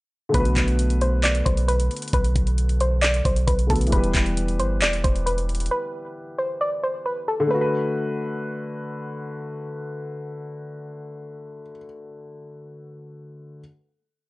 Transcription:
0.29 D3 A3
0.34 B1 B3 F#4 B4, kick, closed hi-hat
0.40 B4
0.45 closed hi-hat
0.57 B1, kick, clap, closed hi-hat
0.68 closed hi-hat
0.79 closed hi-hat
0.90 closed hi-hat
1.01 C5, closed hi-hat
1.23 D5, clap, closed hi-hat
1.35 closed hi-hat
1.46 B1 C5, kick, closed hi-hat
1.57 closed hi-hat
1.68 B4, closed hi-hat
1.80 closed hi-hat
1.91 closed hi-hat
1.96 closed hi-hat
2.02 closed hi-hat
2.08 closed hi-hat
2.13 B1 B4, kick, closed hi-hat
2.24 closed hi-hat
2.36 B1, kick, closed hi-hat
2.47 closed hi-hat
2.58 closed hi-hat
2.69 closed hi-hat
2.80 C5, closed hi-hat
3.02 D5, clap, closed hi-hat
3.14 closed hi-hat
3.25 B1 C5, kick, closed hi-hat
3.36 closed hi-hat
3.47 B1 B4, kick, closed hi-hat
3.59 closed hi-hat
3.67 B1 D3 A3 B3 F#4 A4, kick, closed hi-hat
3.72 B4, closed hi-hat
3.81 closed hi-hat
3.87 E3 G3, closed hi-hat
3.92 E1 B3 G4 B4, kick, closed hi-hat
3.98 B4
4.04 closed hi-hat
4.15 E1, kick, clap, closed hi-hat
4.26 closed hi-hat
4.37 closed hi-hat
4.48 closed hi-hat
4.60 G1 C5, closed hi-hat
4.82 E1 D5, clap, closed hi-hat
4.93 closed hi-hat
5.04 E1 C5, kick, closed hi-hat
5.16 closed hi-hat
5.26 B4, closed hi-hat
5.38 closed hi-hat
5.49 closed hi-hat
5.55 closed hi-hat
5.60 closed hi-hat
5.66 closed hi-hat
5.71 B4
6.38 C5
6.61 D5
6.83 C5
7.06 B4
7.28 A4
7.40 D3
7.47 A3 B4
7.54 F#4
7.61 B4

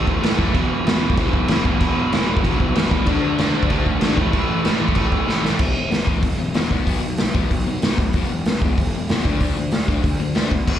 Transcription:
Already playing: A2 E3 A3
0.07 E1, kick
0.21 A1 A2 E3 A3, snare, crash
0.38 F#1 A2 E3 A3, kick
0.54 E1 E2 B2 E3, kick, crash
0.72 E1
0.87 E1 E2 B2 E3, snare, crash
1.03 E1 E2 B2 E3
1.10 kick
1.17 E1 E2 B2 E3, kick, crash
1.33 B1, kick
1.48 E1 E2 B2 E3, snare, crash
1.64 E1 E2 B2 E3, kick
1.79 E1 E2 B2 E3, kick, crash
1.98 E1
2.12 E1 E2 B2 E3, snare, crash
2.28 E1 E2 B2 E3
2.37 kick
2.43 E1 E2 B2 E3, kick, crash
2.60 B1, kick
2.75 E1 E2 B2 E3, snare, crash
2.91 E1 E2 B2 E3, kick
3.04 D2 D3 A3 D4, kick, crash
3.23 D2
3.38 D2 D3 A3 D4, snare, crash
3.53 D2 D3 A3 D4
3.63 kick
3.70 D2 D3 A3 D4, kick, crash
3.86 A1, kick
4.01 G#1 D3 A3 D4, snare, crash
4.17 A1 A2 E3 A3, kick
4.33 A1 A2 E3 A3, kick, crash
4.49 A1
4.65 A1 A2 E3 A3, snare, crash
4.80 A1 A2 E3 A3
4.88 kick
4.95 A1 A2 E3 A3, kick, crash
5.12 E1, kick
5.27 A1 A2 E3 A3, snare
5.43 A1 A2 E3 A3, snare
5.59 E1 E2 B2 E3, kick, crash
5.75 E1 E2 B2
5.91 E1 E2 B2, snare, open hi-hat
6.04 C#2 E2 B2 E3, kick
6.22 E1 E2 B2, kick, open hi-hat
6.38 E1 E2 B2
6.54 E1 E2 B2 E3, snare, open hi-hat
6.70 B1 B2 F#3 B3, kick
6.86 B1 B2 F#3 B3, kick, open hi-hat
7.02 B1 B2 F#3
7.17 B1 B2 F#3, snare, open hi-hat
7.34 A1 B2 F#3 B3, kick
7.51 B1 B2 F#3, kick, open hi-hat
7.66 B1 B2 F#3
7.82 B1 B2 F#3 B3, snare, open hi-hat
7.98 A2 B2 F#3, kick
8.13 E1 E2 B2 E3, kick, open hi-hat
8.31 E1 E2 B2
8.45 E1 E2 B2, snare, open hi-hat
8.62 C#2 E2 B2 E3, kick
8.78 E1 E2 B2, kick, open hi-hat
8.94 E1 E2 B2
9.09 E1 E2 B2 E3, snare, open hi-hat
9.25 D2 D3 A3 D4, kick
9.40 D2 D3 A3 D4, kick, open hi-hat
9.57 D2 D3 A3
9.72 D2 D3 A3, snare, open hi-hat
9.88 B1 D3 A3 D4, kick
10.04 D2 D3 A3, kick, open hi-hat
10.19 D2 D3 A3
10.35 D2 D3 A3 D4, snare, open hi-hat
10.49 B2 D3 A3, kick
10.67 E1 E2 B2 E3, kick, crash

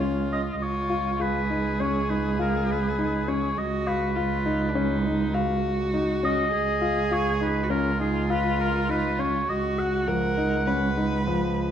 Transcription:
Already playing: C#2 F4 C#5
0.00 C#4
0.32 D#5
0.53 D#5
0.59 C#2 F4 C#5
0.90 F4
1.19 F4 G#4 B4
1.50 D#4
1.80 C#4 C#5
2.10 D#4 B4
2.39 F4 A#4
2.70 B4
2.99 D#4
3.28 C#4 C#5
3.57 C#2 F#4 D#5
3.87 B4 F5
4.15 F4
4.46 D#4
4.69 D4
4.75 C#4 D#4
5.05 D#4
5.33 F#4 F5
5.94 D#4
6.23 C#4 D#5
6.52 C#2 G#4
6.81 F4
7.11 F4 C#5
7.41 D#4 B4
7.63 F#4
7.69 C#4 F4 A#4
8.00 D#4 G#4
8.30 F4 B4
8.61 A#4
8.89 D#4 B4
9.19 C#4 C#5
9.46 C#2 F#4 D#5
9.78 F#4 F#5
10.08 F3 A#4
10.38 D#4
10.67 C#4 B4
10.97 D#4
11.27 F3

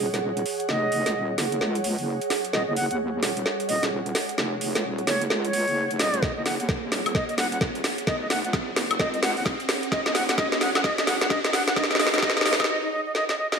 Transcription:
Already playing: G#4 C#5 F#5, riser
0.00 D#1
0.14 snare, closed hi-hat
0.37 closed hi-hat
0.46 open hi-hat
0.60 closed hi-hat
0.69 F1 D#5, snare
0.92 open hi-hat
1.06 C#2, snare, closed hi-hat
1.15 D#1
1.38 F#1, snare, open hi-hat
1.52 closed hi-hat
1.61 C#2, snare
1.75 closed hi-hat
1.84 open hi-hat
1.98 F#1, open hi-hat
2.21 closed hi-hat
2.30 snare, open hi-hat
2.45 closed hi-hat
2.53 D#1 D#5, snare
2.68 F#1 D#5
2.76 F#5, open hi-hat
2.91 D#2 F#5, closed hi-hat
3.23 D#1, snare, open hi-hat
3.37 closed hi-hat
3.46 snare
3.60 closed hi-hat
3.69 D#1 D#5, open hi-hat
3.83 snare, closed hi-hat
4.06 closed hi-hat
4.15 snare, open hi-hat
4.29 closed hi-hat
4.38 F1, snare
4.61 open hi-hat
4.75 C#2, snare, closed hi-hat
4.84 D#1
4.98 closed hi-hat
5.07 F#1 C#5, snare, open hi-hat
5.21 closed hi-hat
5.30 C#2, snare
5.45 C#5, closed hi-hat
5.53 open hi-hat
5.68 F#1, open hi-hat
5.91 F1, closed hi-hat
5.99 D#1 D#5, snare, open hi-hat
6.14 closed hi-hat
6.22 D#1 D#5, kick, snare
6.37 F#1 D#5
6.46 F#5, snare, open hi-hat
6.60 D#2 F#5, closed hi-hat
6.69 kick, snare
6.92 D#1, snare, open hi-hat
7.06 closed hi-hat, high woodblock
7.15 D#5, kick, snare
7.29 D#5, closed hi-hat
7.38 D#1 F#5, snare, open hi-hat
7.52 F#5, closed hi-hat
7.61 kick, snare
7.75 closed hi-hat
7.84 snare, open hi-hat
7.98 closed hi-hat
8.07 F1 D#5, kick, snare
8.21 D#5
8.30 F#5, snare, open hi-hat
8.44 C#2 F#5, closed hi-hat
8.53 D#1, kick, snare
8.76 F#1, snare, open hi-hat
8.91 closed hi-hat, high woodblock
8.99 C#2 D#5, kick, snare
9.14 D#5, closed hi-hat
9.23 F#5, snare, open hi-hat
9.37 F#1 F#5, open hi-hat
9.46 kick, snare
9.60 closed hi-hat
9.69 snare, open hi-hat
9.83 closed hi-hat
9.92 D#1 D#5, kick, snare
10.06 F#1 D#5, snare
10.15 F#5, snare, open hi-hat
10.29 D#2 F#5, snare, closed hi-hat
10.38 D#5, kick, snare
10.52 D#5, snare
10.61 D#1 F#5, snare, open hi-hat
10.75 F#5, snare, closed hi-hat, high woodblock
10.84 D#5, kick, snare
10.98 D#5, snare, closed hi-hat
11.07 D#1 F#5, snare, open hi-hat
11.21 F#5, snare, closed hi-hat
11.30 D#5, kick, snare
11.45 D#5, snare, closed hi-hat
11.53 F#5, snare, open hi-hat
11.68 F#5, snare, closed hi-hat
11.76 F1 D#5, kick, snare
11.84 snare
11.91 D#5, snare, closed hi-hat
11.95 snare
12.00 D#5, snare, open hi-hat
12.07 snare
12.14 C#2 D#5, snare, closed hi-hat
12.18 snare
12.23 D#1 D#5, kick, snare
12.30 snare
12.37 D#5, snare, closed hi-hat
12.41 snare
12.46 F#1 D#5, snare, open hi-hat
12.53 snare
12.60 D#5, kick, snare, closed hi-hat, high woodblock
12.64 snare
12.69 D#5
12.83 D#5
12.92 D#5
13.06 D#5
13.15 D#5, snare
13.29 D#5, snare
13.38 D#5
13.52 D#5, snare

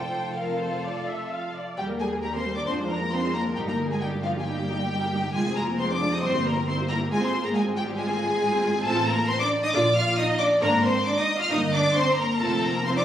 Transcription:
Already playing: F1 F2 F4 A4 C5 G5
0.35 F4 A4 A#4 F5
0.59 C5
0.83 D5
1.07 E5
1.31 F5
1.55 D5
1.77 D#2 G3 G4 G5
1.89 A#3 A#4
2.00 G3 G#3 G4 G#4 G#5
2.12 A#3 A#4
2.22 G3 A#3 G4 A#4 A#5
2.33 A#3 C4 A#4 C5 C6
2.44 G3 G4
2.55 A#3 D4 A#4 D5 D6
2.66 F2 F3 C4 D4 C5 C6
2.78 G#3 F4
2.89 F3 A#3 D4 A#4 A#5
3.00 G#3 F4
3.11 F3 C4 D4 C5 C6
3.23 G#3 F4
3.33 F3 A#3 D4 A#4 A#5
3.45 G#3 F4
3.55 G1 G3 D#4 G4 G5
3.67 A#3 G4 A#4 A#5
3.79 G3 D#4
3.89 G#3 A#3 G4 G#4
3.93 G#5
4.00 G3 D#4 G4 G5
4.12 A#3 G4
4.23 F3 G3 D#4 F4 F5
4.35 A#3 G4 G#5
4.45 G3 D#4 G4 G5
4.57 A#3 G4
4.69 G3 D#4
4.80 A#3 G4
4.91 G3 D#4
5.03 A#3 G4
5.14 G3 D#4
5.24 A#3 G4
5.34 F1 G#3 F4 G#4 G#5
5.46 C4 G#4
5.56 G#3 A#3 F4 A#4 A#5
5.68 C4 G#4
5.79 G#3 C4 F4 C5 C6
5.89 C4 D4 G#4 D5 D6
6.00 G#3 F4
6.11 C4 D#4 G#4 D#5 D#6
6.22 G1 G3 C4 E4 C5 C6
6.33 A#3 G4
6.44 G3 A#3 E4 A#4 A#5
6.55 A#3 G4
6.67 G3 C4 E4 C5 C6
6.79 A#3 G4
6.88 G3 A#3 E4 A#4 A#5
6.99 A#3 G4
7.10 G#1 G#3 F4 G#4 G#5
7.21 C4 G#4 C5 C6
7.32 G#3 F4
7.42 A#3 C4 G#4 A#4 A#5
7.53 G#3 F4 G#4 G#5
7.64 C4 G#4
7.75 G3 G#3 F4 G4 G5
7.87 C4 G#4
7.96 G#3 F4 G#4 G#5
8.08 C4 G#4
8.19 G#3 F4
8.30 C4 G#4
8.40 G#3 F4
8.51 C4 G#4
8.63 G#3 F4
8.74 C4 G#4
8.85 A1 A3 C4 F4 A4 A5
9.07 A#3 A#4 A#5
9.29 C4 C5 C6
9.40 D4 D5 D6
9.63 D#4 D#5 D#6
9.73 A#1 A#3 D4 F4 D5 D6
9.95 F4 F5 F6
10.17 D#4 D#5 D#6
10.39 D4 D5 D6
10.61 G#1 A#3 D4 A#4 A#5
10.84 C4 C5 C6
11.05 D4 D5 D6
11.17 D#4 D#5 D#6
11.39 F4 F5 F6
11.50 G1 A#3 D#4 D#5 D#6
11.73 D4 D5 D6
11.95 C4 C5 C6
12.18 A#3 A#4 A#5
12.40 F1 A3 C4 F4 A4 A5
12.63 A#3 A#4 A#5
12.85 C4 F4 C5 C6
12.97 D4 D5 D6

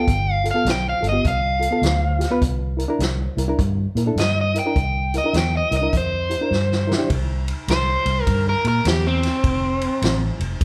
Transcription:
Already playing: G5
0.08 G1, kick, closed hi-hat
0.32 F5
0.44 F4 A4, closed hi-hat
0.51 B3 F4 F5
0.56 A4
0.65 B1, snare, closed hi-hat
0.70 G5
0.89 F5
1.01 G1 F4 A4, closed hi-hat
1.09 B3 F4 G4 D#5
1.24 C2 F5, kick, closed hi-hat
1.60 F4 A4, closed hi-hat
1.71 B3 F4 A4
1.82 D2, snare, closed hi-hat
2.19 F4 G4, snare, closed hi-hat
2.31 B3 F4 B4
2.42 C2, kick, closed hi-hat
2.77 E4 A#4, closed hi-hat
2.88 D4 E4 A#4
2.99 C2, snare, closed hi-hat
3.37 C2 E4 A#4, closed hi-hat
3.48 D4 E4 A#4
3.59 G2, kick, closed hi-hat
3.95 A#2 E4 A#4, closed hi-hat
4.06 D4 E4 A4
4.16 G2 D#5, snare, closed hi-hat
4.41 D#5
4.55 E4 A#4, closed hi-hat
4.59 G5
4.66 D4 E4 A#4
4.76 C2, kick, closed hi-hat
5.14 E4 A#4, closed hi-hat
5.18 D#5
5.24 D4 E4 A#4
5.34 E2, snare, closed hi-hat
5.38 G5
5.57 D#5
5.71 C2 E4 A#4, closed hi-hat
5.77 D#5
5.81 D4 E4 A#4
5.93 F2, kick, closed hi-hat
5.97 C5
6.29 E4 G4, closed hi-hat
6.41 D4 E4 A#4
6.51 G2, snare
6.72 snare
6.87 E4 A#4
6.92 snare
6.98 D4 E4 G4
7.09 C2, kick, ride
7.48 ride
7.68 C2 C5, snare, ride
8.06 C2, ride
8.23 A#4
8.27 G2, kick, ride
8.49 A#4
8.65 A#2 A#4, ride
8.85 E2 G4, snare, ride
9.07 C4
9.23 snare, ride
9.44 F1, kick, ride
9.81 ride
10.02 A1, snare, ride
10.40 F1, ride
10.61 A#1, kick, ride

